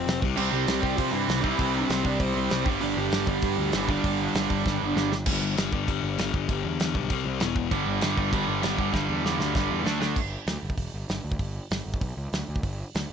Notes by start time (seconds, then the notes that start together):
Already playing: F2 C3 F3 C4 C5
0.07 F1, snare, open hi-hat
0.21 C2 C3 G3 C4, kick
0.36 C2 C3 G3 C4 C5, crash
0.50 C2 G3 G4
0.67 C2, snare, open hi-hat
0.81 C2 G3 G4, kick
0.97 C3 F3 F4, kick, open hi-hat
1.12 G2 E3 E4
1.29 C2, snare, open hi-hat
1.41 C3 E3 G3 E4, kick
1.46 C4
1.58 C2 C3 G3 C4, kick, open hi-hat
1.88 C2 C4 C5, snare, open hi-hat
2.04 C2 D4 D5, kick
2.18 C2 C4 C5, kick, open hi-hat
2.36 C2
2.50 C2, snare, open hi-hat
2.65 G1 G2 D3 G3, kick
2.81 G1 D4 D5, open hi-hat
2.97 G1 G3 G4
3.12 G1, snare, open hi-hat
3.27 G1 G3 G4, kick
3.42 G2, kick, open hi-hat
3.58 D2
3.72 G1 G2 D3 E3 G3 E4, snare, open hi-hat
3.88 G2 D3 G3 D4 D5, kick
4.04 G1, kick, open hi-hat
4.34 G1, snare, open hi-hat
4.50 G1, kick
4.66 G1, kick, snare
4.82 G1
4.95 G1 G2 D3 G3, snare
5.12 snare
5.26 G1 G2 D3 G3, kick, crash
5.42 G1
5.57 G1 G2 D3 G3, snare, crash
5.73 G1 G2 D3 G3, kick
5.88 G1 G2 D3 G3, kick, crash
6.03 G1
6.18 G1 G2 D3 G3, snare, crash
6.34 G1 G2 D3 G3, kick
6.49 G1 G2 D3 G3, kick, crash
6.64 E2
6.79 E2 G2 D3 G3, snare, crash
6.94 B1 G2 D3 G3, kick
7.10 C2 C3 G3 C4, kick, crash
7.26 C2
7.40 E1 E2 B2 E3, snare, crash
7.56 E2 B2 E3, kick
7.71 G1 G2 D3 G3, kick, crash
7.87 G1
8.01 G1 G2 D3 G3, snare, crash
8.17 G1 G2 D3 G3, kick
8.32 G1 G2 D3 G3, kick, crash
8.48 G1
8.63 G1 G2 D3 G3, snare, crash
8.78 G1 G2 D3 G3, kick
8.92 G1 G2 D3 G3, kick, snare
9.09 E2
9.24 E2 G2 D3 G3, snare
9.39 D2 G2 D3 G3, snare
9.54 G1 G2 D3 G3, kick, snare
9.71 E2
9.84 D2 D3 A3 D4, snare
10.00 D3 A3 D4, snare
10.16 G1, kick, crash
10.47 D2, snare, open hi-hat
10.63 G1
10.70 kick
10.77 E1, kick, open hi-hat
10.94 G1
11.09 G1, snare, open hi-hat
11.24 D2
11.32 kick
11.39 G1, kick, open hi-hat
11.71 G1, snare, open hi-hat
11.86 G1
11.94 kick
12.01 B1, kick, open hi-hat
12.17 C#2
12.33 D2, snare, open hi-hat
12.49 D2
12.56 kick
12.63 G1, kick, open hi-hat
12.95 D2, snare, open hi-hat